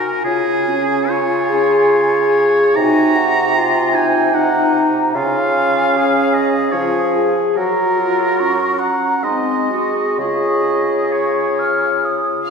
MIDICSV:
0, 0, Header, 1, 6, 480
1, 0, Start_track
1, 0, Key_signature, -5, "major"
1, 0, Tempo, 832178
1, 148, Time_signature, 3, 2, 24, 8
1, 1596, Tempo, 793651
1, 3996, Tempo, 825309
1, 4956, Tempo, 846262
1, 5436, Tempo, 934579
1, 7115, End_track
2, 0, Start_track
2, 0, Title_t, "Flute"
2, 0, Program_c, 0, 73
2, 0, Note_on_c, 0, 80, 46
2, 1452, Note_off_c, 0, 80, 0
2, 1595, Note_on_c, 0, 80, 54
2, 1833, Note_on_c, 0, 78, 61
2, 1842, Note_off_c, 0, 80, 0
2, 2072, Note_on_c, 0, 80, 50
2, 2081, Note_off_c, 0, 78, 0
2, 2547, Note_on_c, 0, 82, 53
2, 2556, Note_off_c, 0, 80, 0
2, 3043, Note_on_c, 0, 80, 52
2, 3052, Note_off_c, 0, 82, 0
2, 3995, Note_off_c, 0, 80, 0
2, 3998, Note_on_c, 0, 80, 49
2, 4472, Note_off_c, 0, 80, 0
2, 4487, Note_on_c, 0, 82, 41
2, 4961, Note_on_c, 0, 85, 43
2, 4969, Note_off_c, 0, 82, 0
2, 5187, Note_on_c, 0, 82, 46
2, 5195, Note_off_c, 0, 85, 0
2, 5441, Note_on_c, 0, 84, 37
2, 5449, Note_off_c, 0, 82, 0
2, 5761, Note_off_c, 0, 84, 0
2, 5927, Note_on_c, 0, 85, 32
2, 6337, Note_off_c, 0, 85, 0
2, 6410, Note_on_c, 0, 85, 39
2, 6646, Note_on_c, 0, 89, 41
2, 6653, Note_off_c, 0, 85, 0
2, 6882, Note_on_c, 0, 87, 38
2, 6890, Note_off_c, 0, 89, 0
2, 7115, Note_off_c, 0, 87, 0
2, 7115, End_track
3, 0, Start_track
3, 0, Title_t, "Oboe"
3, 0, Program_c, 1, 68
3, 0, Note_on_c, 1, 70, 62
3, 136, Note_off_c, 1, 70, 0
3, 140, Note_on_c, 1, 68, 75
3, 634, Note_on_c, 1, 73, 65
3, 642, Note_off_c, 1, 68, 0
3, 1100, Note_off_c, 1, 73, 0
3, 1106, Note_on_c, 1, 73, 72
3, 1592, Note_on_c, 1, 82, 99
3, 1601, Note_off_c, 1, 73, 0
3, 2311, Note_on_c, 1, 80, 71
3, 2320, Note_off_c, 1, 82, 0
3, 2547, Note_on_c, 1, 78, 70
3, 2556, Note_off_c, 1, 80, 0
3, 2870, Note_off_c, 1, 78, 0
3, 3038, Note_on_c, 1, 77, 86
3, 3755, Note_on_c, 1, 75, 64
3, 3764, Note_off_c, 1, 77, 0
3, 3986, Note_on_c, 1, 73, 55
3, 3995, Note_off_c, 1, 75, 0
3, 4230, Note_off_c, 1, 73, 0
3, 4475, Note_on_c, 1, 70, 63
3, 5161, Note_off_c, 1, 70, 0
3, 5184, Note_on_c, 1, 78, 57
3, 5437, Note_on_c, 1, 75, 55
3, 5444, Note_off_c, 1, 78, 0
3, 5925, Note_off_c, 1, 75, 0
3, 5928, Note_on_c, 1, 75, 57
3, 6406, Note_on_c, 1, 73, 41
3, 6414, Note_off_c, 1, 75, 0
3, 6879, Note_off_c, 1, 73, 0
3, 7115, End_track
4, 0, Start_track
4, 0, Title_t, "Clarinet"
4, 0, Program_c, 2, 71
4, 0, Note_on_c, 2, 66, 51
4, 447, Note_off_c, 2, 66, 0
4, 641, Note_on_c, 2, 65, 55
4, 1572, Note_off_c, 2, 65, 0
4, 1604, Note_on_c, 2, 66, 49
4, 2076, Note_on_c, 2, 65, 52
4, 2085, Note_off_c, 2, 66, 0
4, 2305, Note_on_c, 2, 63, 54
4, 2314, Note_off_c, 2, 65, 0
4, 2545, Note_off_c, 2, 63, 0
4, 2548, Note_on_c, 2, 63, 49
4, 3042, Note_on_c, 2, 65, 47
4, 3051, Note_off_c, 2, 63, 0
4, 3533, Note_on_c, 2, 68, 48
4, 3542, Note_off_c, 2, 65, 0
4, 3999, Note_off_c, 2, 68, 0
4, 4004, Note_on_c, 2, 68, 46
4, 4484, Note_on_c, 2, 66, 43
4, 4492, Note_off_c, 2, 68, 0
4, 4721, Note_on_c, 2, 65, 38
4, 4730, Note_off_c, 2, 66, 0
4, 5262, Note_off_c, 2, 65, 0
4, 5434, Note_on_c, 2, 63, 37
4, 5679, Note_on_c, 2, 66, 36
4, 5687, Note_off_c, 2, 63, 0
4, 5933, Note_on_c, 2, 68, 39
4, 5941, Note_off_c, 2, 66, 0
4, 7115, Note_off_c, 2, 68, 0
4, 7115, End_track
5, 0, Start_track
5, 0, Title_t, "French horn section"
5, 0, Program_c, 3, 60
5, 0, Note_on_c, 3, 66, 50
5, 135, Note_on_c, 3, 65, 52
5, 144, Note_off_c, 3, 66, 0
5, 381, Note_off_c, 3, 65, 0
5, 390, Note_on_c, 3, 61, 49
5, 630, Note_on_c, 3, 65, 64
5, 634, Note_off_c, 3, 61, 0
5, 854, Note_on_c, 3, 68, 64
5, 864, Note_off_c, 3, 65, 0
5, 1584, Note_off_c, 3, 68, 0
5, 1591, Note_on_c, 3, 63, 54
5, 1831, Note_on_c, 3, 66, 49
5, 1834, Note_off_c, 3, 63, 0
5, 2068, Note_off_c, 3, 66, 0
5, 2069, Note_on_c, 3, 65, 60
5, 2537, Note_on_c, 3, 63, 53
5, 2549, Note_off_c, 3, 65, 0
5, 2937, Note_off_c, 3, 63, 0
5, 3039, Note_on_c, 3, 61, 51
5, 3976, Note_off_c, 3, 61, 0
5, 3992, Note_on_c, 3, 65, 47
5, 4233, Note_off_c, 3, 65, 0
5, 4244, Note_on_c, 3, 68, 48
5, 4480, Note_off_c, 3, 68, 0
5, 4488, Note_on_c, 3, 66, 44
5, 4726, Note_off_c, 3, 66, 0
5, 4730, Note_on_c, 3, 65, 41
5, 4960, Note_off_c, 3, 65, 0
5, 4966, Note_on_c, 3, 61, 46
5, 5440, Note_off_c, 3, 61, 0
5, 5446, Note_on_c, 3, 60, 39
5, 5685, Note_off_c, 3, 60, 0
5, 5687, Note_on_c, 3, 68, 35
5, 5931, Note_off_c, 3, 68, 0
5, 5937, Note_on_c, 3, 65, 37
5, 7100, Note_off_c, 3, 65, 0
5, 7115, End_track
6, 0, Start_track
6, 0, Title_t, "Bassoon"
6, 0, Program_c, 4, 70
6, 149, Note_on_c, 4, 49, 57
6, 1572, Note_off_c, 4, 49, 0
6, 1595, Note_on_c, 4, 48, 60
6, 3016, Note_off_c, 4, 48, 0
6, 3036, Note_on_c, 4, 49, 55
6, 3974, Note_off_c, 4, 49, 0
6, 3990, Note_on_c, 4, 53, 47
6, 4381, Note_off_c, 4, 53, 0
6, 4479, Note_on_c, 4, 54, 52
6, 5247, Note_off_c, 4, 54, 0
6, 5437, Note_on_c, 4, 56, 39
6, 5927, Note_on_c, 4, 49, 38
6, 5935, Note_off_c, 4, 56, 0
6, 7115, Note_off_c, 4, 49, 0
6, 7115, End_track
0, 0, End_of_file